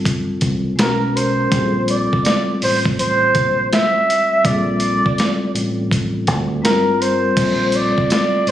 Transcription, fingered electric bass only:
0.00 0.34 G1 medium
0.42 0.75 C2 medium
0.79 1.44 B1 medium
1.52 2.06 A#1 loud
2.62 3.27 A1 medium
3.35 3.68 A#1 medium
4.45 4.99 A#1 loud
5.55 6.28 A1 medium
6.28 6.60 D2 medium
6.64 7.29 G1 medium
7.37 7.91 A#1 medium
8.47 8.51 A1 medium

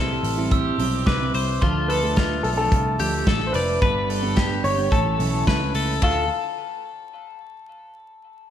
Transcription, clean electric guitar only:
0.00 0.52 A4 medium
0.52 1.04 G4 medium
1.07 1.34 B4 medium
1.35 1.62 C5 medium
1.62 1.90 F4 medium
1.90 2.17 A4 medium
2.17 2.95 F4 medium
3.00 3.27 G4 medium
3.28 3.55 A4 medium
3.55 3.82 D5 medium
3.82 4.10 B4 medium
4.10 4.37 A4 medium
4.37 4.89 G4 medium
4.92 5.44 A4 medium
5.48 5.75 B4 medium
5.75 6.02 A4 medium
6.04 6.29 A4 medium

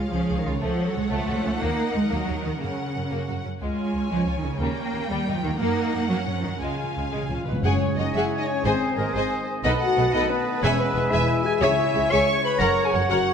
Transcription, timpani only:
6.60 6.68 C#3 soft
6.69 6.75 C#3 soft
6.76 6.82 C#3 soft
6.84 6.90 C#3 soft
6.91 6.98 C#3 soft
6.99 7.06 C#3 soft
7.07 7.14 C#3 soft
7.15 7.21 C#3 soft
7.23 7.28 C#3 soft
7.29 7.36 C#3 medium
7.38 7.44 C#3 medium
7.45 7.51 C#3 medium
7.52 7.61 C#3 medium
7.63 8.11 F#2 medium
11.62 12.08 C#3 medium

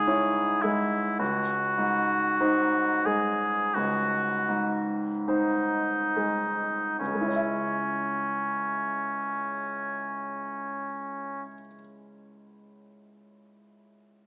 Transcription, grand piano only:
0.00 1.15 C#2 soft
0.00 0.40 G#2 soft
0.00 0.64 G#3 soft
0.07 0.59 E4 soft
0.07 0.59 C#5 soft
0.64 1.20 G#3 soft
1.19 3.71 C#2 soft
1.78 2.79 G#2 soft
2.40 3.02 D#4 soft
2.40 3.02 C5 soft
3.06 4.18 G#3 soft
3.76 6.95 C#2 soft
4.49 5.79 G#2 soft
5.28 6.11 D#4 soft
5.28 6.12 C5 soft
6.17 6.99 G#3 soft
7.00 11.46 C#2 soft
7.07 11.52 C#3 soft
7.14 11.59 G#3 soft
7.21 11.66 E4 soft
7.28 11.73 C#5 soft
7.36 11.81 E5 soft

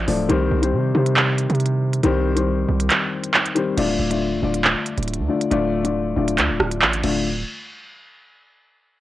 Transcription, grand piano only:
0.00 0.08 F3 loud
0.00 0.08 A3 medium
0.00 0.08 D4 loud
0.00 0.09 A4 loud
0.00 0.09 D5 loud
0.08 0.25 F3 medium
0.08 0.26 A3 medium
0.08 0.26 D4 medium
0.08 0.26 A4 medium
0.08 0.26 D5 loud
0.29 0.56 D#3 loud
0.29 0.56 G3 loud
0.29 0.56 C4 loud
0.29 0.56 G4 medium
0.29 0.56 C5 loud
0.62 0.88 D#3 medium
0.62 0.88 G3 medium
0.62 0.89 C4 medium
0.62 0.89 G4 medium
0.62 0.89 C5 loud
0.95 1.65 D#3 medium
0.95 1.65 G3 medium
0.95 1.66 C4 medium
0.95 1.66 G4 medium
0.95 1.66 C5 medium
2.04 2.30 D#3 loud
2.04 2.30 G3 loud
2.04 2.30 C4 loud
2.04 2.31 G4 loud
2.04 2.31 C5 loud
2.36 3.06 D#3 medium
2.36 3.06 G3 medium
2.36 3.06 C4 medium
2.36 3.07 G4 medium
2.36 3.07 C5 medium
3.55 3.73 D#3 medium
3.55 3.73 G3 medium
3.55 3.73 C4 medium
3.55 3.74 G4 medium
3.55 3.74 C5 loud
3.77 4.04 D3 loud
3.77 4.04 A3 loud
3.77 4.04 F4 loud
3.77 4.04 D5 loud
4.10 4.36 D3 medium
4.10 4.37 A3 medium
4.10 4.37 F4 medium
4.10 4.37 D5 medium
4.42 5.13 D3 medium
4.42 5.13 A3 medium
4.42 5.13 F4 medium
4.42 5.13 D5 loud
5.28 5.47 D3 medium
5.28 5.47 A3 medium
5.28 5.47 F4 medium
5.28 5.47 D5 medium
5.51 5.78 D3 loud
5.51 5.78 A3 loud
5.51 5.78 F4 loud
5.51 5.78 D5 loud
5.84 6.10 D3 medium
5.84 6.10 A3 medium
5.84 6.11 F4 medium
5.84 6.11 D5 medium
6.16 6.87 D3 medium
6.16 6.87 A3 medium
6.16 6.87 F4 medium
6.16 6.87 D5 loud
7.04 7.24 D3 medium
7.04 7.24 A3 medium
7.04 7.24 F4 medium
7.04 7.24 D5 loud

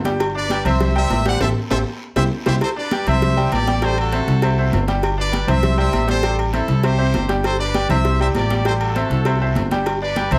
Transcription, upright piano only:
0.05 0.29 G3 medium
0.05 0.30 G4 loud
0.05 0.30 G5 loud
0.35 0.47 D4 medium
0.35 0.47 D5 medium
0.50 0.62 G3 medium
0.50 0.63 G4 medium
0.50 0.63 G5 medium
0.65 0.90 C4 medium
0.65 0.90 C5 medium
0.65 0.90 E5 medium
0.95 1.20 G3 medium
0.95 1.20 G4 loud
0.95 1.20 G5 loud
1.25 1.38 G3 loud
1.25 1.38 G4 loud
1.25 1.38 G5 medium
1.40 1.50 G4 loud
1.40 1.50 A4 loud
1.40 1.50 C5 medium
1.71 1.80 G4 loud
1.71 1.80 A4 medium
1.71 1.80 C5 loud
2.16 2.26 E4 loud
2.16 2.26 G4 medium
2.16 2.26 C5 loud
2.46 2.56 E4 loud
2.46 2.56 G4 loud
2.46 2.56 C5 loud
2.76 2.89 D4 medium
2.76 2.89 D5 medium
2.92 3.04 G3 medium
2.92 3.04 G4 medium
2.92 3.04 G5 medium
3.07 3.32 C4 medium
3.07 3.32 C5 medium
3.07 3.32 E5 medium
3.36 3.61 G3 medium
3.36 3.62 G4 loud
3.36 3.62 G5 loud
3.67 3.79 G3 loud
3.67 3.79 G4 medium
3.67 3.80 G5 loud
3.83 4.07 G3 medium
3.83 4.07 G4 medium
3.83 4.07 G5 medium
4.12 4.37 C4 medium
4.12 4.37 C5 medium
4.12 4.37 E5 medium
4.43 4.55 C4 medium
4.43 4.55 C5 medium
4.43 4.55 E5 medium
4.58 4.83 C4 medium
4.58 4.83 C5 medium
4.58 4.83 E5 medium
4.88 5.13 G3 medium
4.88 5.13 G4 loud
4.88 5.13 G5 medium
5.18 5.30 D4 medium
5.18 5.30 D5 medium
5.32 5.45 G3 medium
5.32 5.45 G4 medium
5.32 5.45 G5 medium
5.47 5.72 C4 medium
5.47 5.73 C5 medium
5.47 5.73 E5 medium
5.77 6.02 G3 loud
5.77 6.03 G4 loud
5.77 6.03 G5 medium
6.07 6.20 G3 medium
6.07 6.20 G4 loud
6.07 6.20 G5 medium
6.23 6.48 G3 medium
6.23 6.48 G4 medium
6.23 6.48 G5 medium
6.53 6.78 C4 medium
6.53 6.78 C5 medium
6.53 6.78 E5 medium
6.83 6.96 C4 medium
6.83 6.96 C5 medium
6.83 6.96 E5 medium
6.98 7.23 C4 medium
6.98 7.23 C5 medium
6.98 7.24 E5 medium
7.28 7.53 G3 medium
7.28 7.54 G4 loud
7.28 7.54 G5 medium
7.59 7.72 D4 medium
7.59 7.72 D5 medium
7.74 7.87 G3 medium
7.74 7.87 G4 medium
7.74 7.87 G5 medium
7.90 8.15 C4 medium
7.90 8.15 C5 medium
7.90 8.15 E5 medium
8.20 8.45 G3 medium
8.20 8.45 G4 loud
8.20 8.45 G5 medium
8.50 8.63 G3 medium
8.50 8.63 G4 medium
8.50 8.63 G5 medium
8.66 8.90 G3 medium
8.66 8.90 G4 medium
8.66 8.90 G5 medium
8.95 9.20 C4 medium
8.95 9.20 C5 medium
8.95 9.21 E5 medium
9.26 9.38 C4 medium
9.26 9.38 C5 medium
9.26 9.38 E5 medium
9.41 9.66 C4 medium
9.41 9.66 C5 medium
9.41 9.66 E5 medium
9.71 9.96 G3 medium
9.71 9.96 G4 loud
9.71 9.96 G5 medium
10.02 10.14 D4 medium
10.02 10.14 D5 medium
10.16 10.28 G3 medium
10.16 10.29 G4 medium
10.16 10.29 G5 medium
10.32 10.39 C4 medium
10.32 10.39 C5 medium
10.32 10.39 E5 medium

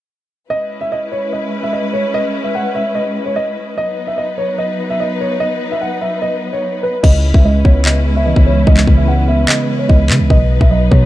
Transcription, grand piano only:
0.50 0.79 D#5 loud
0.81 0.89 E5 medium
0.92 1.08 D#5 medium
1.12 1.27 C#5 medium
1.33 1.61 D#5 medium
1.63 1.71 E5 medium
1.73 1.89 D#5 medium
1.93 2.09 C#5 medium
2.14 2.43 D#5 loud
2.44 2.52 E5 medium
2.55 2.71 F#5 medium
2.75 2.91 E5 medium
2.95 3.24 D#5 medium
3.26 3.34 C#5 medium
3.36 3.75 D#5 medium
3.78 4.06 D#5 loud
4.07 4.15 E5 medium
4.18 4.34 D#5 medium
4.38 4.54 C#5 medium
4.58 4.87 D#5 medium
4.90 4.98 E5 medium
5.00 5.16 D#5 medium
5.21 5.36 C#5 medium
5.40 5.69 D#5 loud
5.71 5.79 E5 medium
5.81 5.97 F#5 medium
6.01 6.17 E5 medium
6.22 6.51 D#5 medium
6.53 6.82 C#5 medium
6.83 6.99 B4 medium
7.03 7.32 D#5 loud
7.34 7.42 E5 medium
7.45 7.61 D#5 medium
7.65 7.80 C#5 medium
7.86 8.14 D#5 medium
8.16 8.24 E5 medium
8.26 8.42 D#5 medium
8.46 8.62 C#5 medium
8.67 8.96 D#5 loud
8.97 9.05 E5 medium
9.08 9.24 F#5 medium
9.28 9.44 E5 medium
9.48 9.77 D#5 medium
9.79 9.87 C#5 medium
9.89 10.28 D#5 medium
10.31 10.59 D#5 loud
10.60 10.68 E5 medium
10.71 10.87 D#5 medium
10.91 11.05 C#5 medium

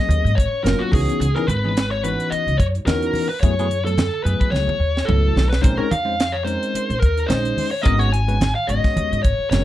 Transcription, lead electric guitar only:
0.00 0.38 D#5 medium
0.35 0.64 C#5 medium
0.64 0.80 A#4 medium
0.79 0.91 F#4 medium
0.93 1.36 G#4 loud
1.35 1.47 A#4 medium
1.47 1.90 B4 medium
1.91 2.03 C#5 medium
2.03 2.32 B4 medium
2.30 2.59 D#5 medium
2.57 2.65 C#5 medium
2.86 3.29 A#4 medium
3.29 3.40 B4 medium
3.41 3.85 C#5 medium
3.85 4.23 A4 medium
4.24 4.50 B4 medium
4.50 5.09 C#5 medium
5.05 5.46 A4 medium
5.49 5.62 B4 medium
5.62 5.77 C5 medium
5.77 5.91 A#4 medium
5.91 6.36 F5 medium
6.32 6.44 C#5 medium
6.44 6.97 C5 medium
7.00 7.27 A#4 medium
7.27 7.71 C5 medium
7.71 7.82 C#5 medium
7.82 7.99 D#5 medium
7.99 8.13 C#5 medium
8.13 8.55 G#5 medium
8.55 8.69 F5 medium
8.67 9.22 D#5 medium
9.23 9.49 C#5 medium
9.50 9.64 C#5 medium

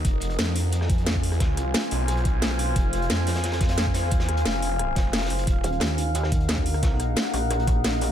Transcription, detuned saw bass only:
0.05 0.20 F1 medium
0.22 0.37 F1 loud
0.39 1.36 F2 medium
1.36 1.73 D#2 medium
1.91 2.75 B1 loud
2.76 2.92 F1 loud
2.93 3.09 F1 loud
3.10 4.04 F2 medium
4.04 4.31 E2 medium
4.31 4.44 D#2 medium
4.45 4.95 F1 loud
4.96 5.29 F1 loud
5.30 5.46 F#1 loud
5.47 5.63 D#1 medium

